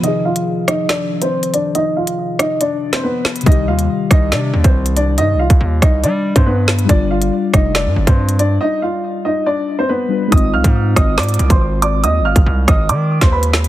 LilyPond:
<<
  \new Staff \with { instrumentName = "Grand piano" } { \time 4/4 \key aes \lydian \tempo 4 = 140 <ees' ees''>8 <f' f''>4 <ees' ees''>8 <d' d''>8. <c' c''>8. <d' d''>8 | <ees' ees''>8 <f' f''>4 <ees' ees''>8 <d' d''>8. <c' c''>16 <b b'>4 | <ees' ees''>8 <f' f''>4 <ees' ees''>8 <d' d''>8. <c' c''>8. <d' d''>8 | <ees' ees''>8 <f' f''>4 <ees' ees''>8 <d' d''>8. <c' c''>16 <b b'>4 |
<d' d''>8 <f' f''>4 <ees' ees''>8 <d' d''>8. <c' c''>8. <d' d''>8 | <ees' ees''>8 <f' f''>4 <ees' ees''>8 <d' d''>8. <c' c''>16 <b b'>4 | <ees'' ees'''>8 <f'' f'''>4 <ees'' ees'''>8 <d'' d'''>8. <c'' c'''>8. <d'' d'''>8 | <ees'' ees'''>8 <f'' f'''>4 <ees'' ees'''>8 <d'' d'''>8. <c'' c'''>16 <b' b''>4 | }
  \new Staff \with { instrumentName = "Synth keys" } { \time 4/4 \key aes \lydian <c ees f aes'>1~ | <c ees f aes'>1 | <c ees g g'>1~ | <c ees g g'>1 |
<g d' f' d''>1~ | <g d' f' d''>2.~ <g d' f' d''>8 <g d' f' b'>8 | <aes c' ees' f'>1~ | <aes c' ees' f'>1 | }
  \new Staff \with { instrumentName = "808-style bass" } { \clef bass \time 4/4 \key aes \lydian r1 | r1 | c,8 ees,8 r8 c,8 c8 ees,16 c,4~ c,16 | g,16. c,16. c,16 ees,8 c,8 g8. g,4~ g,16 |
g,,4 r8 f,,8. g,16 g,,16 g,4~ g,16 | r1 | aes,,8 c,16 aes,8. aes,,8 aes,8 c,16 aes,,4~ aes,,16 | ees,16. aes,,16. aes,,16 c,8 aes,,8 ees8. ees,4~ ees,16 | }
  \new DrumStaff \with { instrumentName = "Drums" } \drummode { \time 4/4 hh8. hh16 r8 <hh ss>8 <hh sn>8. hh16 r16 hh16 hh8 | hh8. hh16 r8 <hh ss>8 hh8. <hh sn>16 r8 <ss sn>16 hh32 hh32 | <hh bd>32 hh8 r32 hh16 r8 <hh bd ss>8 <hh sn>8. <hh bd>16 r16 hh16 hh8 | hh8. <hh bd>16 r8 <hh bd ss>8 hh8. <hh bd>16 r8 sn16 hh16 |
<hh bd>8. hh16 r8 <hh bd ss>8 <hh sn>8. <hh bd>16 r16 hh16 hh8 | r4 r4 r4 r4 | <hh bd>32 hh8 r32 <hh bd>16 r8 <hh bd ss>8 <hh sn>32 hh32 hh32 hh32 hh16 <hh bd>16 r8 hh8 | hh8. <hh bd>16 r8 <hh bd ss>8 hh8. <hh bd sn>16 r16 hh16 sn16 hh16 | }
>>